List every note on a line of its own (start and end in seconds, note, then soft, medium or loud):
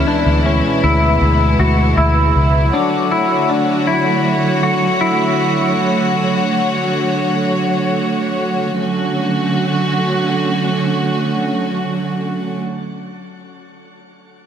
0.00 2.70 B2 medium
0.00 2.69 E3 medium
0.00 2.70 G#3 medium
0.00 2.69 B3 medium
0.00 2.69 E4 medium
0.08 0.45 D4 medium
0.26 0.59 D2 medium
0.46 0.83 C#4 medium
0.83 1.16 D2 medium
0.83 1.59 E4 medium
1.21 1.55 D2 medium
1.59 1.92 D2 medium
1.59 1.97 F#4 medium
1.97 2.30 D2 medium
1.97 2.73 E4 medium
2.35 2.68 C#2 medium
2.73 8.76 D3 medium
2.73 8.76 F#3 medium
2.73 8.77 A3 medium
2.73 3.11 D4 medium
2.73 8.76 F#4 medium
2.73 8.76 C#5 medium
3.11 3.49 E4 medium
3.49 3.87 D4 medium
3.87 4.63 E4 medium
4.63 5.00 F#4 medium
5.01 5.77 E4 medium
8.80 12.60 D3 medium
8.80 12.60 F#3 medium
8.80 12.60 A3 medium
8.80 12.60 C#4 medium
8.80 12.60 F#4 medium